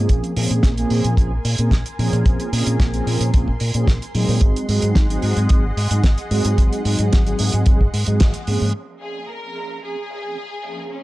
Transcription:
Already playing: analog polysynth F3 A#3 C4 C#4 G#4
0.09 fingered electric bass A#1, analog synth pad A#4 G#5 C6, kick, closed hi-hat
0.24 closed hi-hat
0.36 fingered electric bass A#2, analog polysynth F3 A#3 C4 C#4 G#4, open hi-hat
0.51 fingered electric bass A#2, closed hi-hat
0.63 fingered electric bass A#1, kick, snare, closed hi-hat
0.77 analog polysynth F3 A#3 C4 C#4 G#4, closed hi-hat
0.90 fingered electric bass A#2, open hi-hat
1.04 fingered electric bass A#2, closed hi-hat
1.17 fingered electric bass A#1, analog polysynth F3 A#3 C4 C#4 G#4, kick, closed hi-hat
1.45 fingered electric bass A#2, open hi-hat
1.58 fingered electric bass A#2, analog polysynth F3 A#3 C4 C#4 G#4, closed hi-hat
1.71 fingered electric bass A#1, kick, snare, closed hi-hat
1.86 closed hi-hat
1.98 fingered electric bass A#2, analog polysynth F3 A#3 C4 C#4 G#4, open hi-hat
2.13 fingered electric bass A#2, closed hi-hat
2.26 fingered electric bass A#1, kick, closed hi-hat
2.40 closed hi-hat
2.52 fingered electric bass A#2, analog polysynth F3 A#3 C4 C#4 G#4, open hi-hat
2.66 fingered electric bass A#2, closed hi-hat
2.80 fingered electric bass A#1, kick, snare, closed hi-hat
2.93 analog polysynth F3 A#3 C4 C#4 G#4, closed hi-hat
3.07 fingered electric bass A#2, open hi-hat
3.21 fingered electric bass A#2, closed hi-hat
3.33 fingered electric bass A#1, analog polysynth F3 A#3 C4 C#4 G#4, kick, closed hi-hat
3.48 kick
3.60 fingered electric bass A#2, open hi-hat
3.74 fingered electric bass A#2, analog polysynth F3 A#3 C4 C#4 G#4, closed hi-hat
3.88 fingered electric bass A#1, kick, snare, closed hi-hat
4.02 closed hi-hat
4.14 fingered electric bass A#2, analog polysynth F#3 G#3 C4 D#4 G#4, open hi-hat
4.29 fingered electric bass A#2, open hi-hat
4.41 fingered electric bass G#1, analog synth pad G#4 D#5 F#5, kick, closed hi-hat
4.56 closed hi-hat
4.68 fingered electric bass G#2, analog polysynth F#3 G#3 C4 D#4 G#4, open hi-hat
4.82 fingered electric bass G#2, closed hi-hat
4.95 fingered electric bass G#1, kick, snare, closed hi-hat
5.09 analog polysynth F#3 G#3 C4 D#4 G#4, closed hi-hat
5.22 fingered electric bass G#2, open hi-hat
5.37 fingered electric bass G#2, closed hi-hat
5.49 fingered electric bass G#1, analog polysynth F#3 G#3 C4 D#4 G#4, kick, closed hi-hat
5.77 fingered electric bass G#2, open hi-hat
5.90 fingered electric bass G#2, analog polysynth F#3 G#3 C4 D#4 G#4, closed hi-hat
6.04 fingered electric bass G#1, kick, snare, closed hi-hat
6.18 closed hi-hat
6.30 fingered electric bass G#2, analog polysynth F#3 G#3 C4 D#4 G#4, open hi-hat
6.45 fingered electric bass G#2, closed hi-hat
6.58 fingered electric bass G#1, kick, closed hi-hat
6.73 closed hi-hat
6.85 fingered electric bass G#2, analog polysynth F#3 G#3 C4 D#4 G#4, open hi-hat
6.99 fingered electric bass G#2, closed hi-hat
7.13 fingered electric bass G#1, kick, snare, closed hi-hat
7.26 analog polysynth F#3 G#3 C4 D#4 G#4, closed hi-hat
7.39 fingered electric bass G#2, open hi-hat
7.52 fingered electric bass G#2, closed hi-hat
7.66 fingered electric bass G#1, analog polysynth F#3 G#3 C4 D#4 G#4, kick, closed hi-hat
7.81 kick
7.93 fingered electric bass G#2, open hi-hat
8.06 fingered electric bass G#2, analog polysynth F#3 G#3 C4 D#4 G#4, closed hi-hat
8.20 fingered electric bass G#1, kick, snare, closed hi-hat
8.34 closed hi-hat
8.47 fingered electric bass G#2, analog polysynth F3 A#3 C4 C#4 G#4, open hi-hat
8.61 fingered electric bass G#2, open hi-hat
8.74 analog synth pad G#4 A#5 C6
9.01 analog polysynth F3 A#3 C4 C#4 G#4, violin section G#4, open hi-hat
9.29 violin section A#4
9.42 analog polysynth F3 A#3 C4 C#4 G#4
9.55 open hi-hat
9.82 analog polysynth F3 A#3 C4 C#4 G#4, violin section G#4
10.10 open hi-hat
10.23 analog polysynth F3 A#3 C4 C#4 G#4
10.63 analog polysynth F3 A#3 C4 C#4 G#4, open hi-hat
10.91 violin section C#4

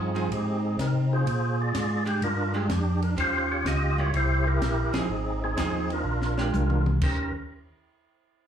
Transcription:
Already playing: tonewheel organ G2 C4 D#4 F4 G#4
0.15 hollow-body jazz guitar F3 C4 D#4 G#4, tonewheel organ F4, ride
0.31 tonewheel organ G#2 C4 D#4 G4, kick, ride
0.65 tonewheel organ G#4
0.79 tonewheel organ C3 A#4, kick, snare, hi-hat pedal, ride
1.13 tonewheel organ F4 G#4 C5
1.26 tonewheel organ A#2, kick, ride
1.60 tonewheel organ D5
1.74 tonewheel organ G#2 D5, kick, snare, hi-hat pedal, ride
2.05 hollow-body jazz guitar G#3 D4 G4, tonewheel organ G4, ride
2.22 tonewheel organ G2 D4 F4 A#4, kick, ride
2.54 hollow-body jazz guitar G#3 D4 G4, tonewheel organ G#4
2.68 tonewheel organ F2 F4 G4, kick, snare, hi-hat pedal, ride
3.02 tonewheel organ A#4, ride
3.17 tonewheel organ D#2 F4 C5, hollow-body jazz guitar D#3 C#4 G4 C5, kick, ride
3.21 tonewheel organ G4
3.52 tonewheel organ C#5
3.66 tonewheel organ C#2 D#5, kick, snare, hi-hat pedal, ride
3.98 hollow-body jazz guitar G3 A#3 E4, tonewheel organ C#5
4.14 tonewheel organ C2 E4 G4 C5, kick, ride
4.47 tonewheel organ E4 G4 A#4
4.62 tonewheel organ A#1, kick, snare, hi-hat pedal, ride
4.93 tonewheel organ A#1 C4 D#4 G#4, hollow-body jazz guitar F3 C4 D#4 G#4, snare, ride
5.09 tonewheel organ G#1
5.44 tonewheel organ C4 D#4 G#4
5.57 tonewheel organ D#2, hollow-body jazz guitar F3 C4 D#4 G#4, kick, snare, hi-hat pedal, ride
5.90 tonewheel organ D4 F4 A#4, ride
6.05 tonewheel organ A#1
6.22 snare
6.37 hollow-body jazz guitar G#3 D4 G4, snare
6.54 tonewheel organ C2, hi-hat pedal, high tom
6.70 mid tom
6.86 mid tom
7.02 tonewheel organ D#2 A#4, hollow-body jazz guitar D#3 C#4 G4 C5, kick, crash

